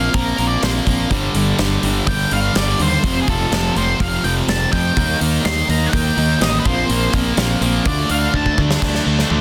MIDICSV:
0, 0, Header, 1, 6, 480
1, 0, Start_track
1, 0, Key_signature, -2, "minor"
1, 0, Tempo, 482703
1, 1100, Time_signature, 4, 2, 24, 8
1, 9356, End_track
2, 0, Start_track
2, 0, Title_t, "Lead electric guitar"
2, 0, Program_c, 0, 29
2, 0, Note_on_c, 0, 77, 75
2, 125, Note_off_c, 0, 77, 0
2, 140, Note_on_c, 0, 70, 74
2, 467, Note_on_c, 0, 74, 74
2, 470, Note_off_c, 0, 70, 0
2, 624, Note_on_c, 0, 72, 64
2, 628, Note_off_c, 0, 74, 0
2, 689, Note_off_c, 0, 72, 0
2, 2066, Note_on_c, 0, 79, 82
2, 2311, Note_off_c, 0, 79, 0
2, 2312, Note_on_c, 0, 77, 79
2, 2553, Note_off_c, 0, 77, 0
2, 2557, Note_on_c, 0, 74, 83
2, 2797, Note_off_c, 0, 74, 0
2, 2803, Note_on_c, 0, 72, 86
2, 3192, Note_off_c, 0, 72, 0
2, 3196, Note_on_c, 0, 68, 60
2, 3264, Note_off_c, 0, 68, 0
2, 3277, Note_on_c, 0, 69, 88
2, 3717, Note_off_c, 0, 69, 0
2, 3754, Note_on_c, 0, 72, 79
2, 3981, Note_on_c, 0, 77, 94
2, 3996, Note_off_c, 0, 72, 0
2, 4206, Note_off_c, 0, 77, 0
2, 4218, Note_on_c, 0, 79, 90
2, 4284, Note_off_c, 0, 79, 0
2, 4467, Note_on_c, 0, 81, 90
2, 4689, Note_off_c, 0, 81, 0
2, 4695, Note_on_c, 0, 79, 90
2, 5145, Note_off_c, 0, 79, 0
2, 5421, Note_on_c, 0, 84, 100
2, 5665, Note_off_c, 0, 84, 0
2, 5669, Note_on_c, 0, 82, 92
2, 5833, Note_on_c, 0, 78, 68
2, 5842, Note_off_c, 0, 82, 0
2, 5893, Note_off_c, 0, 78, 0
2, 5897, Note_on_c, 0, 79, 94
2, 6346, Note_off_c, 0, 79, 0
2, 6383, Note_on_c, 0, 75, 87
2, 6542, Note_off_c, 0, 75, 0
2, 6550, Note_on_c, 0, 71, 61
2, 6622, Note_off_c, 0, 71, 0
2, 6632, Note_on_c, 0, 72, 76
2, 7074, Note_off_c, 0, 72, 0
2, 7825, Note_on_c, 0, 74, 84
2, 8060, Note_off_c, 0, 74, 0
2, 8064, Note_on_c, 0, 77, 88
2, 8303, Note_on_c, 0, 81, 90
2, 8310, Note_off_c, 0, 77, 0
2, 8525, Note_off_c, 0, 81, 0
2, 9356, End_track
3, 0, Start_track
3, 0, Title_t, "Clean electric guitar"
3, 0, Program_c, 1, 27
3, 0, Note_on_c, 1, 60, 76
3, 120, Note_off_c, 1, 60, 0
3, 146, Note_on_c, 1, 60, 81
3, 358, Note_off_c, 1, 60, 0
3, 394, Note_on_c, 1, 60, 66
3, 603, Note_off_c, 1, 60, 0
3, 629, Note_on_c, 1, 60, 79
3, 840, Note_off_c, 1, 60, 0
3, 866, Note_on_c, 1, 60, 73
3, 1079, Note_off_c, 1, 60, 0
3, 1110, Note_on_c, 1, 62, 85
3, 1114, Note_on_c, 1, 67, 95
3, 1331, Note_off_c, 1, 62, 0
3, 1333, Note_off_c, 1, 67, 0
3, 1343, Note_on_c, 1, 62, 73
3, 1558, Note_off_c, 1, 62, 0
3, 1580, Note_on_c, 1, 62, 72
3, 1797, Note_off_c, 1, 62, 0
3, 1826, Note_on_c, 1, 62, 82
3, 2040, Note_off_c, 1, 62, 0
3, 2065, Note_on_c, 1, 62, 82
3, 2279, Note_off_c, 1, 62, 0
3, 2304, Note_on_c, 1, 62, 64
3, 2519, Note_off_c, 1, 62, 0
3, 2545, Note_on_c, 1, 62, 78
3, 2760, Note_off_c, 1, 62, 0
3, 2781, Note_on_c, 1, 62, 70
3, 2998, Note_off_c, 1, 62, 0
3, 3017, Note_on_c, 1, 57, 92
3, 3025, Note_on_c, 1, 60, 93
3, 3246, Note_off_c, 1, 57, 0
3, 3249, Note_off_c, 1, 60, 0
3, 3258, Note_on_c, 1, 57, 63
3, 3476, Note_off_c, 1, 57, 0
3, 3499, Note_on_c, 1, 57, 83
3, 3717, Note_off_c, 1, 57, 0
3, 3735, Note_on_c, 1, 57, 80
3, 3955, Note_off_c, 1, 57, 0
3, 3977, Note_on_c, 1, 57, 76
3, 4196, Note_off_c, 1, 57, 0
3, 4224, Note_on_c, 1, 57, 68
3, 4440, Note_off_c, 1, 57, 0
3, 4461, Note_on_c, 1, 57, 78
3, 4678, Note_off_c, 1, 57, 0
3, 4709, Note_on_c, 1, 57, 79
3, 4922, Note_off_c, 1, 57, 0
3, 4960, Note_on_c, 1, 55, 96
3, 5177, Note_off_c, 1, 55, 0
3, 6633, Note_on_c, 1, 60, 86
3, 6636, Note_on_c, 1, 65, 99
3, 6854, Note_off_c, 1, 60, 0
3, 6855, Note_off_c, 1, 65, 0
3, 6866, Note_on_c, 1, 60, 78
3, 7080, Note_off_c, 1, 60, 0
3, 7098, Note_on_c, 1, 60, 74
3, 7316, Note_off_c, 1, 60, 0
3, 7340, Note_on_c, 1, 60, 78
3, 7557, Note_off_c, 1, 60, 0
3, 7577, Note_on_c, 1, 60, 78
3, 7796, Note_off_c, 1, 60, 0
3, 7816, Note_on_c, 1, 65, 102
3, 8045, Note_off_c, 1, 65, 0
3, 9356, End_track
4, 0, Start_track
4, 0, Title_t, "Distorted electric guitar"
4, 0, Program_c, 2, 30
4, 0, Note_on_c, 2, 46, 76
4, 0, Note_on_c, 2, 53, 73
4, 0, Note_on_c, 2, 58, 81
4, 127, Note_off_c, 2, 46, 0
4, 139, Note_on_c, 2, 46, 89
4, 140, Note_off_c, 2, 53, 0
4, 144, Note_off_c, 2, 58, 0
4, 152, Note_on_c, 2, 53, 95
4, 156, Note_on_c, 2, 58, 95
4, 369, Note_off_c, 2, 46, 0
4, 377, Note_off_c, 2, 53, 0
4, 381, Note_on_c, 2, 46, 74
4, 382, Note_off_c, 2, 58, 0
4, 389, Note_on_c, 2, 53, 72
4, 394, Note_on_c, 2, 58, 83
4, 613, Note_off_c, 2, 46, 0
4, 621, Note_off_c, 2, 53, 0
4, 625, Note_off_c, 2, 58, 0
4, 625, Note_on_c, 2, 46, 84
4, 633, Note_on_c, 2, 53, 93
4, 637, Note_on_c, 2, 58, 89
4, 857, Note_off_c, 2, 46, 0
4, 863, Note_off_c, 2, 53, 0
4, 869, Note_on_c, 2, 46, 73
4, 871, Note_off_c, 2, 58, 0
4, 875, Note_on_c, 2, 53, 73
4, 883, Note_on_c, 2, 58, 90
4, 1090, Note_off_c, 2, 46, 0
4, 1093, Note_off_c, 2, 53, 0
4, 1097, Note_off_c, 2, 58, 0
4, 1101, Note_on_c, 2, 43, 80
4, 1111, Note_on_c, 2, 50, 88
4, 1115, Note_on_c, 2, 55, 92
4, 1338, Note_off_c, 2, 43, 0
4, 1347, Note_off_c, 2, 50, 0
4, 1350, Note_on_c, 2, 43, 73
4, 1352, Note_off_c, 2, 55, 0
4, 1359, Note_on_c, 2, 50, 94
4, 1364, Note_on_c, 2, 55, 99
4, 1574, Note_off_c, 2, 43, 0
4, 1584, Note_off_c, 2, 50, 0
4, 1586, Note_on_c, 2, 43, 77
4, 1590, Note_off_c, 2, 55, 0
4, 1596, Note_on_c, 2, 50, 95
4, 1602, Note_on_c, 2, 55, 85
4, 1816, Note_off_c, 2, 43, 0
4, 1823, Note_off_c, 2, 50, 0
4, 1828, Note_on_c, 2, 43, 72
4, 1829, Note_off_c, 2, 55, 0
4, 1835, Note_on_c, 2, 50, 78
4, 1841, Note_on_c, 2, 55, 75
4, 2054, Note_off_c, 2, 43, 0
4, 2063, Note_off_c, 2, 50, 0
4, 2066, Note_on_c, 2, 43, 83
4, 2070, Note_off_c, 2, 55, 0
4, 2075, Note_on_c, 2, 50, 91
4, 2082, Note_on_c, 2, 55, 98
4, 2293, Note_off_c, 2, 43, 0
4, 2303, Note_off_c, 2, 50, 0
4, 2305, Note_on_c, 2, 43, 75
4, 2307, Note_off_c, 2, 55, 0
4, 2314, Note_on_c, 2, 50, 87
4, 2319, Note_on_c, 2, 55, 86
4, 2540, Note_off_c, 2, 43, 0
4, 2549, Note_off_c, 2, 50, 0
4, 2552, Note_on_c, 2, 43, 80
4, 2555, Note_off_c, 2, 55, 0
4, 2561, Note_on_c, 2, 50, 81
4, 2567, Note_on_c, 2, 55, 90
4, 2780, Note_off_c, 2, 43, 0
4, 2787, Note_off_c, 2, 50, 0
4, 2791, Note_on_c, 2, 43, 84
4, 2794, Note_off_c, 2, 55, 0
4, 2799, Note_on_c, 2, 50, 73
4, 2806, Note_on_c, 2, 55, 90
4, 3013, Note_off_c, 2, 43, 0
4, 3017, Note_off_c, 2, 50, 0
4, 3020, Note_off_c, 2, 55, 0
4, 3026, Note_on_c, 2, 41, 83
4, 3038, Note_on_c, 2, 48, 90
4, 3042, Note_on_c, 2, 53, 94
4, 3254, Note_off_c, 2, 41, 0
4, 3262, Note_off_c, 2, 48, 0
4, 3265, Note_off_c, 2, 53, 0
4, 3266, Note_on_c, 2, 41, 84
4, 3274, Note_on_c, 2, 48, 81
4, 3277, Note_on_c, 2, 53, 98
4, 3490, Note_off_c, 2, 41, 0
4, 3499, Note_off_c, 2, 48, 0
4, 3502, Note_on_c, 2, 41, 82
4, 3503, Note_off_c, 2, 53, 0
4, 3511, Note_on_c, 2, 48, 88
4, 3515, Note_on_c, 2, 53, 87
4, 3733, Note_off_c, 2, 41, 0
4, 3741, Note_off_c, 2, 48, 0
4, 3745, Note_on_c, 2, 41, 73
4, 3747, Note_off_c, 2, 53, 0
4, 3753, Note_on_c, 2, 48, 82
4, 3759, Note_on_c, 2, 53, 86
4, 3978, Note_off_c, 2, 41, 0
4, 3987, Note_off_c, 2, 48, 0
4, 3990, Note_on_c, 2, 41, 88
4, 3996, Note_off_c, 2, 53, 0
4, 3999, Note_on_c, 2, 48, 103
4, 4007, Note_on_c, 2, 53, 106
4, 4217, Note_off_c, 2, 41, 0
4, 4223, Note_off_c, 2, 48, 0
4, 4227, Note_off_c, 2, 53, 0
4, 4228, Note_on_c, 2, 41, 73
4, 4235, Note_on_c, 2, 48, 96
4, 4239, Note_on_c, 2, 53, 85
4, 4453, Note_off_c, 2, 41, 0
4, 4460, Note_off_c, 2, 48, 0
4, 4465, Note_on_c, 2, 41, 79
4, 4468, Note_off_c, 2, 53, 0
4, 4472, Note_on_c, 2, 48, 86
4, 4480, Note_on_c, 2, 53, 89
4, 4690, Note_off_c, 2, 41, 0
4, 4700, Note_off_c, 2, 48, 0
4, 4702, Note_on_c, 2, 41, 70
4, 4708, Note_off_c, 2, 53, 0
4, 4712, Note_on_c, 2, 48, 76
4, 4720, Note_on_c, 2, 53, 88
4, 4928, Note_off_c, 2, 41, 0
4, 4934, Note_off_c, 2, 48, 0
4, 4937, Note_off_c, 2, 53, 0
4, 4938, Note_on_c, 2, 51, 91
4, 4946, Note_on_c, 2, 58, 95
4, 4951, Note_on_c, 2, 63, 83
4, 5164, Note_off_c, 2, 51, 0
4, 5173, Note_off_c, 2, 58, 0
4, 5176, Note_on_c, 2, 51, 85
4, 5177, Note_off_c, 2, 63, 0
4, 5185, Note_on_c, 2, 58, 90
4, 5189, Note_on_c, 2, 63, 91
4, 5404, Note_off_c, 2, 51, 0
4, 5411, Note_off_c, 2, 58, 0
4, 5416, Note_on_c, 2, 51, 92
4, 5422, Note_off_c, 2, 63, 0
4, 5423, Note_on_c, 2, 58, 90
4, 5434, Note_on_c, 2, 63, 91
4, 5644, Note_off_c, 2, 51, 0
4, 5651, Note_off_c, 2, 58, 0
4, 5655, Note_on_c, 2, 51, 74
4, 5659, Note_off_c, 2, 63, 0
4, 5663, Note_on_c, 2, 58, 88
4, 5671, Note_on_c, 2, 63, 84
4, 5885, Note_off_c, 2, 51, 0
4, 5892, Note_off_c, 2, 58, 0
4, 5896, Note_on_c, 2, 51, 88
4, 5899, Note_off_c, 2, 63, 0
4, 5904, Note_on_c, 2, 58, 96
4, 5911, Note_on_c, 2, 63, 105
4, 6123, Note_off_c, 2, 51, 0
4, 6134, Note_off_c, 2, 58, 0
4, 6135, Note_on_c, 2, 51, 78
4, 6138, Note_off_c, 2, 63, 0
4, 6146, Note_on_c, 2, 58, 89
4, 6149, Note_on_c, 2, 63, 89
4, 6358, Note_off_c, 2, 51, 0
4, 6367, Note_off_c, 2, 58, 0
4, 6370, Note_on_c, 2, 51, 88
4, 6371, Note_off_c, 2, 63, 0
4, 6379, Note_on_c, 2, 58, 92
4, 6383, Note_on_c, 2, 63, 109
4, 6602, Note_off_c, 2, 51, 0
4, 6607, Note_off_c, 2, 58, 0
4, 6609, Note_off_c, 2, 63, 0
4, 6611, Note_on_c, 2, 46, 83
4, 6619, Note_on_c, 2, 53, 96
4, 6628, Note_on_c, 2, 58, 108
4, 6841, Note_off_c, 2, 46, 0
4, 6848, Note_off_c, 2, 53, 0
4, 6853, Note_on_c, 2, 46, 96
4, 6856, Note_off_c, 2, 58, 0
4, 6860, Note_on_c, 2, 53, 104
4, 6868, Note_on_c, 2, 58, 104
4, 7082, Note_off_c, 2, 46, 0
4, 7087, Note_off_c, 2, 53, 0
4, 7094, Note_on_c, 2, 46, 80
4, 7098, Note_off_c, 2, 58, 0
4, 7099, Note_on_c, 2, 53, 96
4, 7110, Note_on_c, 2, 58, 97
4, 7317, Note_off_c, 2, 46, 0
4, 7326, Note_off_c, 2, 53, 0
4, 7329, Note_on_c, 2, 46, 90
4, 7332, Note_off_c, 2, 58, 0
4, 7338, Note_on_c, 2, 53, 96
4, 7343, Note_on_c, 2, 58, 105
4, 7561, Note_off_c, 2, 46, 0
4, 7568, Note_off_c, 2, 53, 0
4, 7573, Note_off_c, 2, 58, 0
4, 7573, Note_on_c, 2, 46, 77
4, 7580, Note_on_c, 2, 53, 81
4, 7585, Note_on_c, 2, 58, 87
4, 7803, Note_off_c, 2, 46, 0
4, 7807, Note_off_c, 2, 53, 0
4, 7809, Note_off_c, 2, 58, 0
4, 7816, Note_on_c, 2, 50, 98
4, 7822, Note_on_c, 2, 57, 103
4, 7831, Note_on_c, 2, 62, 108
4, 8049, Note_off_c, 2, 50, 0
4, 8055, Note_off_c, 2, 57, 0
4, 8061, Note_on_c, 2, 50, 89
4, 8062, Note_off_c, 2, 62, 0
4, 8067, Note_on_c, 2, 57, 84
4, 8074, Note_on_c, 2, 62, 100
4, 8287, Note_off_c, 2, 50, 0
4, 8297, Note_off_c, 2, 57, 0
4, 8299, Note_on_c, 2, 50, 77
4, 8302, Note_off_c, 2, 62, 0
4, 8309, Note_on_c, 2, 57, 89
4, 8314, Note_on_c, 2, 62, 98
4, 8519, Note_off_c, 2, 50, 0
4, 8527, Note_off_c, 2, 57, 0
4, 8531, Note_on_c, 2, 50, 76
4, 8535, Note_off_c, 2, 62, 0
4, 8539, Note_on_c, 2, 57, 84
4, 8547, Note_on_c, 2, 62, 88
4, 8761, Note_off_c, 2, 50, 0
4, 8765, Note_off_c, 2, 57, 0
4, 8769, Note_off_c, 2, 62, 0
4, 8778, Note_on_c, 2, 50, 89
4, 8781, Note_on_c, 2, 57, 89
4, 8792, Note_on_c, 2, 62, 99
4, 9008, Note_off_c, 2, 50, 0
4, 9014, Note_off_c, 2, 57, 0
4, 9020, Note_on_c, 2, 50, 82
4, 9022, Note_off_c, 2, 62, 0
4, 9026, Note_on_c, 2, 57, 85
4, 9034, Note_on_c, 2, 62, 96
4, 9234, Note_off_c, 2, 50, 0
4, 9244, Note_off_c, 2, 57, 0
4, 9246, Note_on_c, 2, 50, 79
4, 9252, Note_off_c, 2, 62, 0
4, 9256, Note_on_c, 2, 57, 91
4, 9264, Note_on_c, 2, 62, 101
4, 9356, Note_off_c, 2, 50, 0
4, 9356, Note_off_c, 2, 57, 0
4, 9356, Note_off_c, 2, 62, 0
4, 9356, End_track
5, 0, Start_track
5, 0, Title_t, "Fingered electric bass"
5, 0, Program_c, 3, 33
5, 141, Note_on_c, 3, 34, 86
5, 309, Note_off_c, 3, 34, 0
5, 381, Note_on_c, 3, 34, 79
5, 549, Note_off_c, 3, 34, 0
5, 622, Note_on_c, 3, 34, 84
5, 789, Note_off_c, 3, 34, 0
5, 864, Note_on_c, 3, 34, 79
5, 1031, Note_off_c, 3, 34, 0
5, 1099, Note_on_c, 3, 31, 86
5, 1268, Note_off_c, 3, 31, 0
5, 1334, Note_on_c, 3, 31, 83
5, 1505, Note_off_c, 3, 31, 0
5, 1578, Note_on_c, 3, 31, 87
5, 1747, Note_off_c, 3, 31, 0
5, 1818, Note_on_c, 3, 31, 81
5, 1988, Note_off_c, 3, 31, 0
5, 2059, Note_on_c, 3, 31, 93
5, 2228, Note_off_c, 3, 31, 0
5, 2299, Note_on_c, 3, 31, 82
5, 2468, Note_off_c, 3, 31, 0
5, 2541, Note_on_c, 3, 31, 81
5, 2710, Note_off_c, 3, 31, 0
5, 2773, Note_on_c, 3, 39, 80
5, 2945, Note_off_c, 3, 39, 0
5, 3020, Note_on_c, 3, 29, 88
5, 3190, Note_off_c, 3, 29, 0
5, 3261, Note_on_c, 3, 29, 82
5, 3430, Note_off_c, 3, 29, 0
5, 3490, Note_on_c, 3, 29, 89
5, 3663, Note_off_c, 3, 29, 0
5, 3737, Note_on_c, 3, 29, 78
5, 3907, Note_off_c, 3, 29, 0
5, 3976, Note_on_c, 3, 29, 96
5, 4147, Note_off_c, 3, 29, 0
5, 4210, Note_on_c, 3, 29, 86
5, 4383, Note_off_c, 3, 29, 0
5, 4450, Note_on_c, 3, 29, 90
5, 4623, Note_off_c, 3, 29, 0
5, 4700, Note_on_c, 3, 41, 81
5, 4870, Note_off_c, 3, 41, 0
5, 4943, Note_on_c, 3, 39, 89
5, 5111, Note_off_c, 3, 39, 0
5, 5179, Note_on_c, 3, 39, 86
5, 5349, Note_off_c, 3, 39, 0
5, 5418, Note_on_c, 3, 39, 89
5, 5588, Note_off_c, 3, 39, 0
5, 5654, Note_on_c, 3, 39, 86
5, 5825, Note_off_c, 3, 39, 0
5, 5902, Note_on_c, 3, 39, 96
5, 6071, Note_off_c, 3, 39, 0
5, 6134, Note_on_c, 3, 39, 95
5, 6305, Note_off_c, 3, 39, 0
5, 6372, Note_on_c, 3, 33, 83
5, 6544, Note_off_c, 3, 33, 0
5, 6617, Note_on_c, 3, 34, 84
5, 6787, Note_off_c, 3, 34, 0
5, 6852, Note_on_c, 3, 34, 92
5, 7024, Note_off_c, 3, 34, 0
5, 7097, Note_on_c, 3, 34, 89
5, 7267, Note_off_c, 3, 34, 0
5, 7330, Note_on_c, 3, 34, 81
5, 7502, Note_off_c, 3, 34, 0
5, 7565, Note_on_c, 3, 34, 88
5, 7740, Note_off_c, 3, 34, 0
5, 7812, Note_on_c, 3, 38, 96
5, 7984, Note_off_c, 3, 38, 0
5, 8049, Note_on_c, 3, 38, 94
5, 8221, Note_off_c, 3, 38, 0
5, 8292, Note_on_c, 3, 38, 87
5, 8463, Note_off_c, 3, 38, 0
5, 8533, Note_on_c, 3, 38, 86
5, 8704, Note_off_c, 3, 38, 0
5, 8768, Note_on_c, 3, 38, 90
5, 8935, Note_off_c, 3, 38, 0
5, 9010, Note_on_c, 3, 38, 93
5, 9176, Note_off_c, 3, 38, 0
5, 9251, Note_on_c, 3, 38, 93
5, 9356, Note_off_c, 3, 38, 0
5, 9356, End_track
6, 0, Start_track
6, 0, Title_t, "Drums"
6, 140, Note_on_c, 9, 46, 65
6, 141, Note_on_c, 9, 36, 102
6, 239, Note_off_c, 9, 46, 0
6, 241, Note_off_c, 9, 36, 0
6, 381, Note_on_c, 9, 46, 49
6, 480, Note_off_c, 9, 46, 0
6, 623, Note_on_c, 9, 46, 71
6, 628, Note_on_c, 9, 38, 103
6, 723, Note_off_c, 9, 46, 0
6, 728, Note_off_c, 9, 38, 0
6, 863, Note_on_c, 9, 36, 69
6, 866, Note_on_c, 9, 46, 53
6, 962, Note_off_c, 9, 36, 0
6, 966, Note_off_c, 9, 46, 0
6, 1102, Note_on_c, 9, 36, 96
6, 1103, Note_on_c, 9, 46, 71
6, 1201, Note_off_c, 9, 36, 0
6, 1203, Note_off_c, 9, 46, 0
6, 1339, Note_on_c, 9, 46, 57
6, 1439, Note_off_c, 9, 46, 0
6, 1577, Note_on_c, 9, 46, 71
6, 1582, Note_on_c, 9, 38, 99
6, 1677, Note_off_c, 9, 46, 0
6, 1682, Note_off_c, 9, 38, 0
6, 1820, Note_on_c, 9, 46, 47
6, 1920, Note_off_c, 9, 46, 0
6, 2059, Note_on_c, 9, 46, 68
6, 2060, Note_on_c, 9, 36, 100
6, 2159, Note_off_c, 9, 36, 0
6, 2159, Note_off_c, 9, 46, 0
6, 2300, Note_on_c, 9, 46, 48
6, 2400, Note_off_c, 9, 46, 0
6, 2540, Note_on_c, 9, 46, 67
6, 2545, Note_on_c, 9, 38, 106
6, 2640, Note_off_c, 9, 46, 0
6, 2645, Note_off_c, 9, 38, 0
6, 2779, Note_on_c, 9, 46, 52
6, 2878, Note_off_c, 9, 46, 0
6, 3020, Note_on_c, 9, 36, 93
6, 3021, Note_on_c, 9, 46, 62
6, 3120, Note_off_c, 9, 36, 0
6, 3121, Note_off_c, 9, 46, 0
6, 3261, Note_on_c, 9, 36, 86
6, 3262, Note_on_c, 9, 46, 53
6, 3360, Note_off_c, 9, 36, 0
6, 3361, Note_off_c, 9, 46, 0
6, 3503, Note_on_c, 9, 46, 62
6, 3508, Note_on_c, 9, 38, 103
6, 3602, Note_off_c, 9, 46, 0
6, 3607, Note_off_c, 9, 38, 0
6, 3743, Note_on_c, 9, 46, 51
6, 3843, Note_off_c, 9, 46, 0
6, 3979, Note_on_c, 9, 46, 71
6, 3980, Note_on_c, 9, 36, 100
6, 4079, Note_off_c, 9, 36, 0
6, 4079, Note_off_c, 9, 46, 0
6, 4220, Note_on_c, 9, 46, 53
6, 4320, Note_off_c, 9, 46, 0
6, 4461, Note_on_c, 9, 46, 74
6, 4466, Note_on_c, 9, 38, 113
6, 4560, Note_off_c, 9, 46, 0
6, 4565, Note_off_c, 9, 38, 0
6, 4701, Note_on_c, 9, 36, 73
6, 4702, Note_on_c, 9, 46, 56
6, 4800, Note_off_c, 9, 36, 0
6, 4802, Note_off_c, 9, 46, 0
6, 4941, Note_on_c, 9, 36, 101
6, 4943, Note_on_c, 9, 46, 74
6, 5040, Note_off_c, 9, 36, 0
6, 5042, Note_off_c, 9, 46, 0
6, 5184, Note_on_c, 9, 46, 64
6, 5283, Note_off_c, 9, 46, 0
6, 5420, Note_on_c, 9, 46, 67
6, 5425, Note_on_c, 9, 38, 105
6, 5520, Note_off_c, 9, 46, 0
6, 5525, Note_off_c, 9, 38, 0
6, 5664, Note_on_c, 9, 46, 58
6, 5764, Note_off_c, 9, 46, 0
6, 5900, Note_on_c, 9, 36, 110
6, 5901, Note_on_c, 9, 46, 74
6, 5999, Note_off_c, 9, 36, 0
6, 6000, Note_off_c, 9, 46, 0
6, 6141, Note_on_c, 9, 46, 52
6, 6241, Note_off_c, 9, 46, 0
6, 6378, Note_on_c, 9, 46, 70
6, 6383, Note_on_c, 9, 38, 102
6, 6478, Note_off_c, 9, 46, 0
6, 6482, Note_off_c, 9, 38, 0
6, 6618, Note_on_c, 9, 36, 104
6, 6621, Note_on_c, 9, 46, 48
6, 6717, Note_off_c, 9, 36, 0
6, 6720, Note_off_c, 9, 46, 0
6, 6858, Note_on_c, 9, 46, 68
6, 6958, Note_off_c, 9, 46, 0
6, 7093, Note_on_c, 9, 46, 58
6, 7096, Note_on_c, 9, 36, 78
6, 7193, Note_off_c, 9, 46, 0
6, 7195, Note_off_c, 9, 36, 0
6, 7333, Note_on_c, 9, 46, 68
6, 7337, Note_on_c, 9, 38, 106
6, 7432, Note_off_c, 9, 46, 0
6, 7437, Note_off_c, 9, 38, 0
6, 7576, Note_on_c, 9, 46, 53
6, 7676, Note_off_c, 9, 46, 0
6, 7811, Note_on_c, 9, 46, 67
6, 7812, Note_on_c, 9, 36, 105
6, 7910, Note_off_c, 9, 46, 0
6, 7912, Note_off_c, 9, 36, 0
6, 8050, Note_on_c, 9, 46, 54
6, 8149, Note_off_c, 9, 46, 0
6, 8291, Note_on_c, 9, 36, 58
6, 8390, Note_off_c, 9, 36, 0
6, 8411, Note_on_c, 9, 36, 62
6, 8510, Note_off_c, 9, 36, 0
6, 8532, Note_on_c, 9, 36, 81
6, 8631, Note_off_c, 9, 36, 0
6, 8657, Note_on_c, 9, 38, 89
6, 8757, Note_off_c, 9, 38, 0
6, 8770, Note_on_c, 9, 49, 110
6, 8772, Note_on_c, 9, 36, 100
6, 8774, Note_on_c, 9, 38, 58
6, 8869, Note_off_c, 9, 49, 0
6, 8871, Note_off_c, 9, 36, 0
6, 8874, Note_off_c, 9, 38, 0
6, 8896, Note_on_c, 9, 38, 53
6, 8995, Note_off_c, 9, 38, 0
6, 9137, Note_on_c, 9, 38, 59
6, 9237, Note_off_c, 9, 38, 0
6, 9251, Note_on_c, 9, 48, 65
6, 9350, Note_off_c, 9, 48, 0
6, 9356, End_track
0, 0, End_of_file